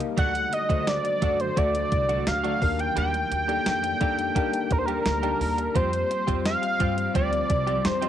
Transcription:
Already playing: ambient pad G3 A#3 D#4 G4, tine electric piano A#3 D#4 G4 A#4 D#5 F5 G5 A5
0.00 muted clean electric guitar stroke, closed hi-hat
0.17 upright bass D2, tine electric piano D3 A3 D4 F#4 A4 D5, ambient pad D3 F#3 A3 F#4, clean electric guitar F#3 A3 D4 F#4, analog synth lead F#5, kick, closed hi-hat
0.35 muted clean electric guitar stroke, closed hi-hat
0.52 analog synth lead D#5, muted clean electric guitar stroke, closed hi-hat
0.69 upright bass D2, clean electric guitar F#3 A3 D4 F#4, tine electric piano A3 D4 F#4 A4 C5, kick, closed hi-hat
0.87 analog synth lead D5, muted clean electric guitar stroke, snare, closed hi-hat, tambourine
1.04 muted clean electric guitar stroke, closed hi-hat
1.22 upright bass F#2, clean electric guitar F#3 A3 D4 F#4, tine electric piano A3 D4 F#4 A4 D5, kick, closed hi-hat
1.39 analog synth lead C5, muted clean electric guitar stroke, closed hi-hat
1.56 upright bass D2, clean electric guitar F#3 A3 D4 F#4, tine electric piano A3 D4 F#4 A4 D5, analog synth lead D5, kick, closed hi-hat
1.74 muted clean electric guitar stroke, closed hi-hat
1.91 upright bass C2, muted clean electric guitar stroke, kick, closed hi-hat
2.09 clean electric guitar F#3 A3 D4 F#4, closed hi-hat
2.27 upright bass D2, analog synth lead F5, snare, closed hi-hat, tambourine
2.44 clean electric guitar F#3 A3 D4 F#4, tine electric piano A3 D4 F#4 A4 D5, closed hi-hat
2.61 upright bass D#2, tine electric piano D#3 A#3 D4 D#4 G4 A#4, ambient pad G3 A#3 G4 D5, kick, open hi-hat
2.79 analog synth lead G5, muted clean electric guitar stroke, closed hi-hat
2.96 upright bass D#2, clean electric guitar G3 A#3 D4 G4, analog synth lead G5, closed hi-hat
3.14 muted clean electric guitar stroke, closed hi-hat
3.31 upright bass D#2, muted clean electric guitar stroke, closed hi-hat
3.48 clean electric guitar G3 A#3 D4 G4, tine electric piano A#3 D4 D#4 G4 A4, closed hi-hat
3.66 upright bass F2, muted clean electric guitar stroke, snare, closed hi-hat, tambourine
3.83 muted clean electric guitar stroke, closed hi-hat
4.01 upright bass F2, clean electric guitar G3 A#3 D4 G4, tine electric piano A#3 D4 D#4 G4 A4, kick, closed hi-hat
4.18 muted clean electric guitar stroke, closed hi-hat
4.35 clean electric guitar G3 A#3 D4 G4, tine electric piano A#3 D4 D#4 G4 A#4, kick, closed hi-hat
4.53 muted clean electric guitar stroke, closed hi-hat
4.70 upright bass D#2, analog synth lead A#4, muted clean electric guitar stroke, kick, closed hi-hat
4.78 analog synth lead C5
4.86 clean electric guitar G3 A#3 D4 G4, analog synth lead A#4, closed hi-hat
5.06 upright bass D2, snare, closed hi-hat, tambourine
5.23 clean electric guitar G3 A#3 D4 G4, tine electric piano A#3 D4 D#4 G4 A5, closed hi-hat
5.40 upright bass D#2, muted clean electric guitar stroke, open hi-hat
5.58 muted clean electric guitar stroke, closed hi-hat
5.75 upright bass F2, clean electric guitar F3 C4 F4 G4, ambient pad F3 G3 C4, tine electric piano G3 C4 F4 G4 C5, analog synth lead C5, kick, closed hi-hat
5.92 muted clean electric guitar stroke, closed hi-hat
6.10 muted clean electric guitar stroke, closed hi-hat
6.27 upright bass F2, clean electric guitar F3 C4 F4 G4, tine electric piano G3 C4 F4 G4 C5, kick, closed hi-hat
6.45 analog synth lead F5, snare, closed hi-hat, tambourine
6.62 muted clean electric guitar stroke, closed hi-hat
6.79 upright bass G2, clean electric guitar F3 C4 F4 G4, tine electric piano G3 C4 F4 G4 C5, kick, closed hi-hat
6.97 muted clean electric guitar stroke, closed hi-hat
7.14 upright bass D2, clean electric guitar F3 C4 F4 G4, tine electric piano G3 C4 F4 G4 C5, analog synth lead D5, kick, closed hi-hat
7.32 muted clean electric guitar stroke, closed hi-hat
7.50 upright bass C2, muted clean electric guitar stroke, kick, closed hi-hat
7.67 clean electric guitar F3 C4 F4 G4, closed hi-hat
7.85 upright bass F2, analog synth lead C5, snare, closed hi-hat, tambourine
8.02 clean electric guitar F3 C4 F4 G4, tine electric piano G3 C4 F4 G4 D#5, closed hi-hat

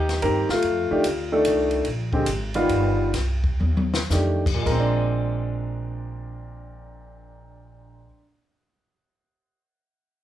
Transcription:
Already playing: upright bass D#2, grand piano D#4 G4
0.09 snare, ride
0.22 upright bass G2, grand piano D#3 A#3 C4 G4 A#4, ride
0.49 grand piano A3 F4, muted upright bass stroke, snare
0.62 upright bass F2, ride
0.91 grand piano D#3 A3 D4 G4, muted upright bass stroke
1.04 upright bass D2, hi-hat pedal, ride
1.32 grand piano D#3 A3 D4 A4
1.45 upright bass C2, hi-hat pedal, ride
1.71 ride
1.85 upright bass A#1, ride
2.13 grand piano D3 G#3 C4 G4, kick
2.26 upright bass G#1, hi-hat pedal, ride
2.54 grand piano D#3 G3 B3 F4, ride
2.69 upright bass G1, ride
3.13 upright bass C2, snare, ride
3.44 kick
3.60 upright bass D#2, mid tom
3.77 mid tom
3.94 snare
4.10 upright bass F2, grand piano D#3 A3 D4 G4, snare, hi-hat pedal
4.46 kick, crash
4.54 grand piano A#2
4.62 upright bass A#1, grand piano G#3 A#4, kick
4.67 crash
4.71 grand piano C4
4.80 grand piano D4

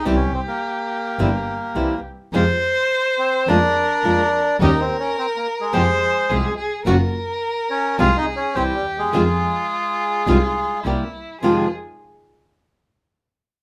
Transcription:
0.05 double bass C2, nylon-string guitar C3 E3 G3 C4 E4, violin G4
0.16 bandoneon C#4
0.34 bandoneon C4
0.48 bandoneon A#3
1.19 double bass G1, nylon-string guitar C3 E3 G3 C4 E4
1.75 double bass C2, nylon-string guitar C3 E3 G3 C4 E4
2.32 double bass F2, nylon-string guitar C3 F3 G#3 C4 F4, string section C4 F4 G#4, violin C5
3.18 bandoneon C4
3.47 double bass F2, nylon-string guitar F3 G#3 D4 F4, string section A#3 D4 G#4, bandoneon D4, violin A#4
4.04 double bass F2, nylon-string guitar F3 G#3 D4 F4, string section A#3 D4 G#4
4.60 double bass D#2, nylon-string guitar D#3 G3 C#4 G4, string section C#4 D#4 G4, bandoneon D#4, violin A#4
4.80 bandoneon C4
4.99 bandoneon C#4
5.18 bandoneon C4
5.36 bandoneon A#3
5.60 bandoneon G#3
5.73 double bass F2, nylon-string guitar C3 F3 G#3 C4 G4, string section G#3 F4 G4, violin C5
6.29 double bass C2, nylon-string guitar C3 F3 G#3 C4 G4, string section G#3 F4 G4, violin G#4
6.58 violin G#4
6.85 double bass F#1, nylon-string guitar C#3 F3 A#3 C#4 F#4, string section A#3 F4 F#4, violin A#4
7.70 bandoneon C#4
7.98 double bass C2, nylon-string guitar C3 F3 G#3 C4 F4, string section C4 F4 G#4, bandoneon F4, violin G#4
8.17 bandoneon D#4
8.36 bandoneon C#4
8.55 double bass C2, nylon-string guitar C3 E3 G3 C4 E4, bandoneon C4, string section C4 E4 G4, violin G4
8.74 bandoneon G3
8.84 double bass D#2
8.98 bandoneon G#3
9.12 double bass F2, nylon-string guitar C3 D#3 G#3 C4 F4, string section D#4 F4 G#4, violin F4
10.27 double bass C2, nylon-string guitar C3 D#3 G#3 C4 F4, string section D#4 F4 G#4
10.83 double bass C2, nylon-string guitar C3 G3 A#3 E4 G4, string section C4 E4 A#4, violin E4
11.41 double bass F2, nylon-string guitar F2 C3 D#3 G#3 C4 F4, bandoneon F3, string section D#4 F4 G#4, violin G#4

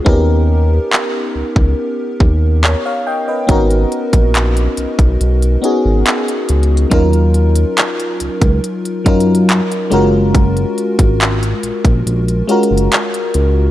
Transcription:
0.05 analog synth bass D#2, fm electric piano B3 C#4 D#4 G4 A#4, kick
0.93 clap
1.35 analog synth bass C#2
1.56 analog synth bass C#2, kick
2.20 analog synth bass D#2, kick
2.64 fm electric piano A#4 C#5, clap
2.86 fm electric piano C#5 F5
3.07 fm electric piano D#5 G5
3.28 fm electric piano B4 D#5
3.47 analog synth bass G#1, fm electric piano B3 C#4 D#4 F#4 A#4, kick, closed hi-hat
3.70 closed hi-hat
3.92 closed hi-hat
4.13 analog synth bass A#1, kick, closed hi-hat
4.35 clap, closed hi-hat
4.57 closed hi-hat
4.77 analog synth bass B1, closed hi-hat
4.99 analog synth bass B1, kick, closed hi-hat
5.21 analog synth bass B1, closed hi-hat
5.42 closed hi-hat
5.62 fm electric piano B3 C#4 D#4 F#4 G#4, closed hi-hat
5.85 analog synth bass G#1
6.06 clap, closed hi-hat
6.28 closed hi-hat
6.49 analog synth bass C#2, closed hi-hat
6.63 closed hi-hat
6.77 closed hi-hat
6.90 analog synth bass D#2, fm electric piano F#3 C#4 D#4 F4 A#4, kick, closed hi-hat
7.13 closed hi-hat
7.34 closed hi-hat
7.56 closed hi-hat
7.78 clap, closed hi-hat
8.00 closed hi-hat
8.20 analog synth bass C#2, closed hi-hat
8.41 analog synth bass C#2, kick, closed hi-hat
8.64 closed hi-hat
8.85 closed hi-hat
9.04 analog synth bass F#2, fm electric piano F#3 C#4 D#4 F4 A#4, kick, closed hi-hat
9.20 closed hi-hat
9.35 closed hi-hat
9.49 clap, closed hi-hat
9.72 closed hi-hat
9.90 analog synth bass F#1, fm electric piano G#3 C#4 F4 F#4 A#4, closed hi-hat
10.35 kick, closed hi-hat
10.57 closed hi-hat
10.78 closed hi-hat
10.99 analog synth bass G#1, kick, closed hi-hat
11.21 clap, closed hi-hat
11.43 closed hi-hat
11.63 analog synth bass A#1, closed hi-hat
11.85 analog synth bass A#1, kick, closed hi-hat
12.06 analog synth bass A#1, closed hi-hat
12.28 closed hi-hat
12.47 fm electric piano G#3 C#4 F4 F#4 A#4, closed hi-hat
12.63 closed hi-hat
12.71 analog synth bass F#1
12.78 closed hi-hat
12.92 clap, closed hi-hat
13.14 closed hi-hat
13.34 analog synth bass C#2, closed hi-hat

